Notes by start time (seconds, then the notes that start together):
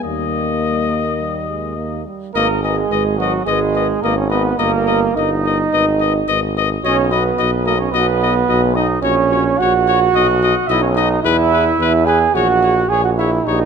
0.03 D#2 G3 A#3 D#5
0.61 G3
0.90 A#3
1.19 G3
1.48 G#3
1.77 A#3
2.06 G3
2.34 G#1 A#3 A#4 B4 D#5
2.61 G#3 G#4 B4 D#5
2.91 G#1 B4 D#5
3.18 F#3 F#4 B4 D#5
3.45 G#1 G#3 G#4 B4 D#5
3.75 B4 D#5
4.02 G#1 A#3 A#4 B4 D#5
4.16 C#4 C#5
4.30 B3 B4 D#5
4.58 G1 A#3 A#4 D#5
4.87 A#4 D#5
5.16 G1 D#4 A#4 D#5
5.46 A#4 D#5
5.73 G#1 B4 D#5
6.01 B4 D#5
6.28 G#1 B4 D#5
6.57 B4 D#5
6.83 B1 C#4 F#4 C#5 D#5
7.11 B3 F#4 B4 D#5
7.38 B1 F#4 D#5
7.66 A#3 F#4 A#4 D#5
7.79 C#4 C#5
7.92 B1 B3 F#4 B4 D#5
8.22 F#4 D#5
8.49 B1 F#4 D#5
8.76 D#4 F#4 D#5
9.02 A#1 C#4 F#4 C#5
9.31 F#4 C#5
9.58 A#1 F#4 C#5 F#5
9.88 F#4 C#5
10.15 B1 F#4 D#5
10.42 F#4 D#5
10.67 B1 E4 F#4 D#5 E5
10.82 C#4 C#5
10.95 D#4 F#4 D#5
11.23 E2 E4 G#4 B4 E5
11.51 G#4 B4
11.79 E2 G#4 B4
12.06 G#4 B4 G#5
12.34 A#1 F#4 G#4 C#5 F#5
12.63 G#4 C#5
12.89 A#1 G#4 C#5 G#5
13.04 F#4 F#5
13.18 E4 G#4 C#5 E5
13.46 A#1 D#4 G4 C#5 D#5